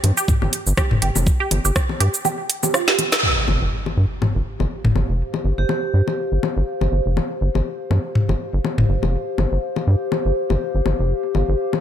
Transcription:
0.04 0.12 G2 medium
0.04 closed hi-hat medium
0.04 low bongo soft
0.17 0.21 G4 loud
0.17 cabasa medium
0.28 kick loud
0.28 mid tom medium
0.28 cabasa soft
0.42 0.49 G1 medium
0.42 0.44 G4 medium
0.42 low bongo soft
0.53 closed hi-hat medium
0.67 0.73 G1 loud
0.67 cabasa medium
0.77 0.82 G4 loud
0.77 kick loud
0.77 cross-stick medium
0.77 low bongo soft
0.77 cabasa soft
0.91 0.98 G1 medium
0.91 mid tom medium
1.02 1.10 G1 loud
1.02 1.05 G4 medium
1.02 closed hi-hat medium
1.16 1.30 F1 medium
1.16 low bongo soft
1.16 cabasa medium
1.27 kick loud
1.27 cabasa soft
1.40 1.44 G4 loud
1.51 1.60 G1 loud
1.51 closed hi-hat medium
1.51 low bongo soft
1.65 1.72 G1 medium
1.65 1.67 G4 medium
1.65 cabasa medium
1.76 kick loud
1.76 cross-stick medium
1.76 cabasa soft
1.89 low bongo soft
2.00 2.09 G2 medium
2.00 2.05 G4 loud
2.00 closed hi-hat medium
2.14 cabasa medium
2.25 2.28 G4 medium
2.25 low bongo soft
2.25 cabasa soft
2.50 closed hi-hat medium
2.63 2.67 G4 medium
2.63 low bongo soft
2.63 cabasa medium
2.74 2.77 F4 medium
2.74 cross-stick medium
2.74 cabasa soft
2.88 2.92 G4 medium
2.88 snare medium
2.99 closed hi-hat medium
2.99 low bongo soft
3.12 snare loud
3.12 cabasa medium
3.23 11.80 G4 medium
3.23 impact medium
3.48 3.56 G1 medium
3.48 low bongo soft
3.62 3.68 G1 medium
3.86 low bongo soft
3.91 11.80 C5 medium
3.91 11.80 F5 medium
3.97 4.06 G2 medium
4.22 mid tom medium
4.22 low bongo soft
4.35 4.42 G1 medium
4.60 4.67 G1 medium
4.60 low bongo soft
4.84 4.91 G1 medium
4.84 mid tom medium
4.95 5.04 G1 loud
4.95 low bongo soft
5.09 5.23 F1 medium
5.34 low bongo soft
5.45 5.53 G1 medium
5.58 5.65 G1 medium
5.58 6.27 G4 medium
5.69 low bongo soft
5.94 6.02 G2 medium
6.08 low bongo soft
6.32 6.39 G1 medium
6.43 low bongo soft
6.57 6.63 G1 loud
6.81 6.88 G1 medium
6.81 low bongo soft
6.92 7.01 G1 medium
7.06 7.20 F1 medium
7.17 low bongo soft
7.41 7.50 G1 medium
7.55 7.62 G1 medium
7.55 low bongo soft
7.91 7.99 G2 medium
7.91 low bongo soft
8.15 mid tom medium
8.29 8.36 G1 medium
8.29 low bongo soft
8.53 8.60 G1 loud
8.65 low bongo soft
8.78 8.85 G1 medium
8.78 mid tom medium
8.89 8.97 G1 loud
9.03 9.17 F1 medium
9.03 low bongo soft
9.38 9.47 G1 loud
9.38 low bongo soft
9.52 9.59 G1 medium
9.76 low bongo soft
9.87 9.96 G2 medium
10.12 low bongo soft
10.25 10.32 G1 medium
10.50 10.57 G1 medium
10.50 low bongo soft
10.75 10.81 G1 medium
10.86 10.94 G1 medium
10.86 low bongo soft
10.99 11.13 F1 medium
11.35 11.43 G1 medium
11.35 low bongo soft
11.49 11.55 G1 medium
11.73 low bongo soft

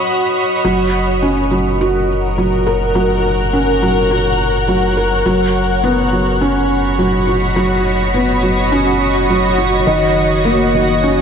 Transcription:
0.00 2.04 F#4 medium
0.00 0.65 C#5 medium
0.00 2.17 D#5 medium
0.00 0.64 B5 medium
0.64 5.23 F#1 loud
0.64 0.92 F#3 loud
0.64 5.25 A#4 medium
1.23 1.39 C#4 medium
1.28 7.10 F#5 medium
1.39 11.22 C#5 medium
1.51 1.67 F#3 medium
1.81 2.08 F#4 medium
2.38 2.65 F#3 medium
2.67 2.94 A#4 medium
2.95 3.23 F#3 medium
3.53 3.69 C#4 medium
3.82 3.98 F#3 medium
4.11 4.38 F#4 medium
4.68 4.96 F#3 medium
4.97 5.24 A#4 medium
5.24 9.85 F#1 medium
5.24 5.53 F#3 medium
5.24 11.22 F#4 medium
5.64 9.87 B5 medium
5.84 6.00 B3 medium
6.08 11.22 D#5 medium
6.12 6.29 F#3 medium
6.41 6.69 C#4 medium
6.99 7.26 F#3 medium
7.27 7.55 F#4 medium
7.56 7.84 F#3 medium
8.14 8.31 B3 medium
8.43 8.59 F#3 medium
8.72 8.99 C#4 medium
9.30 9.57 F#3 medium
9.58 9.86 F#4 medium
9.87 11.22 F#1 medium
9.87 10.14 D#3 medium
10.45 10.61 A#3 medium
10.74 10.91 D#3 medium
11.03 11.22 C#4 medium

